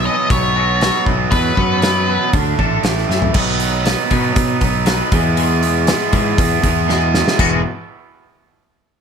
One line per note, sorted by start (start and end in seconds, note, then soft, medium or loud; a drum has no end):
0.00 0.56 B2 medium
0.00 1.05 E3 medium
0.00 0.29 B3 medium
0.00 0.81 E4 medium
0.05 0.28 B2 medium
0.05 0.29 F#3 medium
0.05 0.30 B3 medium
0.05 0.31 D#5 medium
0.30 0.90 B1 medium
0.30 0.54 B2 loud
0.30 0.55 F#3 medium
0.30 1.56 B3 medium
0.30 0.56 B3 loud
0.30 1.03 C#5 medium
0.30 kick loud
0.30 open hi-hat medium
0.56 0.80 B2 medium
0.56 0.81 F#3 medium
0.56 0.81 B3 medium
0.56 1.83 F#4 medium
0.81 1.05 B2 medium
0.81 1.06 F#3 loud
0.81 1.06 B3 loud
0.81 1.81 E4 medium
0.81 snare loud
0.81 open hi-hat medium
1.06 1.26 B1 medium
1.06 1.30 B2 medium
1.06 2.07 E3 medium
1.06 1.31 F#3 medium
1.06 1.31 B3 medium
1.06 kick medium
1.31 1.51 E2 medium
1.31 1.55 B2 medium
1.31 2.33 B2 medium
1.31 1.55 F#3 loud
1.31 1.56 B3 loud
1.31 2.29 B4 loud
1.31 kick loud
1.31 open hi-hat medium
1.56 2.17 F#2 medium
1.56 1.79 B2 medium
1.56 1.81 F#3 medium
1.56 2.33 B3 medium
1.56 1.81 B3 medium
1.56 kick medium
1.81 2.06 B2 medium
1.81 2.06 F#3 medium
1.81 2.07 B3 medium
1.81 2.33 E4 medium
1.81 snare loud
1.81 open hi-hat soft
2.07 2.31 B2 medium
2.07 2.33 E3 medium
2.07 2.32 F#3 medium
2.07 2.32 B3 loud
2.32 2.53 D2 medium
2.32 2.57 D3 medium
2.32 2.84 D3 medium
2.32 2.57 A3 medium
2.32 2.58 D4 medium
2.32 kick loud
2.32 open hi-hat medium
2.58 2.79 A1 medium
2.58 2.82 D3 medium
2.58 2.83 A3 medium
2.58 2.83 D4 medium
2.58 2.85 A4 medium
2.58 kick medium
2.82 3.04 A1 loud
2.82 3.07 A2 medium
2.82 3.35 A2 medium
2.82 3.07 E3 medium
2.82 3.08 A3 medium
2.82 snare loud
2.82 open hi-hat soft
2.98 snare soft
3.08 3.29 F#2 medium
3.08 3.33 A2 medium
3.08 3.33 E3 medium
3.08 3.35 E3 medium
3.08 3.33 A3 medium
3.08 snare medium
3.22 floor tom medium
3.33 3.94 B1 medium
3.33 3.83 B2 medium
3.33 3.59 B2 medium
3.33 3.84 D#3 loud
3.33 3.62 F#3 loud
3.33 3.59 F#3 medium
3.33 3.61 B3 loud
3.33 3.59 B3 medium
3.33 3.59 D#4 medium
3.33 3.59 B4 loud
3.33 kick loud
3.33 crash loud
3.59 3.84 B2 medium
3.59 3.84 F#3 medium
3.59 3.85 F#3 medium
3.59 3.86 B3 medium
3.59 3.85 D#4 medium
3.59 3.87 B4 medium
3.59 open hi-hat medium
3.84 4.36 B2 medium
3.84 4.08 B2 medium
3.84 4.36 D#3 medium
3.84 4.08 F#3 medium
3.84 4.13 F#3 medium
3.84 4.12 B3 medium
3.84 4.10 D#4 medium
3.84 4.10 B4 medium
3.84 snare loud
3.84 open hi-hat medium
4.10 4.34 B2 medium
4.10 4.31 B2 medium
4.10 4.35 F#3 loud
4.10 4.63 F#3 medium
4.10 4.35 B3 loud
4.10 4.62 B3 medium
4.10 4.61 D#4 medium
4.10 4.61 B4 medium
4.10 kick medium
4.10 open hi-hat medium
4.36 4.56 B2 loud
4.36 4.59 F#3 medium
4.36 kick loud
4.36 open hi-hat medium
4.61 5.01 B1 loud
4.61 4.84 B2 medium
4.61 4.84 F#3 medium
4.61 4.86 F#3 medium
4.61 4.87 B3 medium
4.61 4.87 D#4 medium
4.61 4.89 B4 medium
4.61 kick medium
4.61 open hi-hat medium
4.86 5.10 B2 medium
4.86 5.13 F#3 medium
4.86 5.11 F#3 medium
4.86 5.11 B3 loud
4.86 5.12 B3 medium
4.86 5.12 D#4 medium
4.86 5.11 B4 medium
4.86 snare loud
4.86 open hi-hat medium
5.11 5.35 E2 medium
5.11 5.91 E2 medium
5.11 5.36 B2 medium
5.11 5.36 E3 loud
5.11 5.35 E3 medium
5.11 5.36 G#3 medium
5.11 5.37 B3 medium
5.11 5.37 E4 medium
5.11 5.38 G#4 medium
5.11 kick loud
5.11 open hi-hat medium
5.36 5.61 E2 medium
5.36 5.61 B2 medium
5.36 5.85 E3 medium
5.36 5.61 E3 loud
5.36 5.86 G#3 loud
5.36 5.63 B3 loud
5.36 5.62 E4 loud
5.36 5.60 G#4 loud
5.36 open hi-hat medium
5.61 5.85 E2 medium
5.61 5.86 B2 medium
5.61 5.87 B3 medium
5.61 5.88 E4 medium
5.61 5.88 G#4 medium
5.61 open hi-hat medium
5.87 6.10 E2 medium
5.87 6.11 B2 medium
5.87 6.38 E3 medium
5.87 6.38 G#3 medium
5.87 6.14 B3 medium
5.87 6.12 E4 loud
5.87 6.11 G#4 loud
5.87 snare loud
5.87 open hi-hat medium
6.12 6.37 E2 medium
6.12 6.33 G#2 medium
6.12 6.37 B2 loud
6.12 6.37 E3 loud
6.12 6.64 B3 medium
6.12 6.63 E4 medium
6.12 6.61 G#4 medium
6.12 kick medium
6.12 open hi-hat medium
6.38 6.58 E2 medium
6.38 6.62 E2 medium
6.38 kick loud
6.38 open hi-hat medium
6.62 7.22 E2 loud
6.62 6.86 E2 medium
6.62 6.87 B2 medium
6.62 6.87 B3 medium
6.62 6.88 E4 medium
6.62 6.89 G#4 medium
6.62 kick medium
6.62 open hi-hat medium
6.87 7.12 E2 medium
6.87 7.12 B2 loud
6.87 7.13 E3 loud
6.87 7.37 G#3 medium
6.87 7.38 B3 medium
6.87 7.38 E4 medium
6.87 7.39 G#4 medium
6.87 snare medium
7.14 7.37 B2 medium
7.14 snare medium
7.28 snare medium
7.38 7.63 E1 medium
7.38 7.59 E2 medium
7.38 7.59 E2 loud
7.38 7.59 B2 loud
7.38 7.60 B2 loud
7.38 7.59 E3 medium
7.38 7.60 E3 loud
7.38 7.60 G#3 loud
7.38 7.60 B3 loud
7.38 7.60 F#4 loud
7.38 kick loud
7.38 splash medium